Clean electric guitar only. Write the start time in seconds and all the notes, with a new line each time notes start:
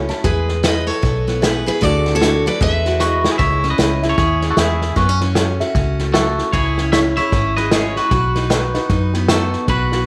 3.01 B3 F#4
3.32 E4 G#4
3.38 C#5 E5
3.70 B4 D#5
4.09 A4 C#5
4.18 G#4 C#5
4.50 F#4 A4
4.58 E4 G#4
4.97 C#4 F#4
6.14 F#4 A4
6.53 G#4 C#5
6.92 C#5 E5
7.17 C#5 E5
7.57 B4 D#5
7.71 G#4 C#5
7.97 F#4 B4
9.29 F#4 A4
9.69 F#4 B4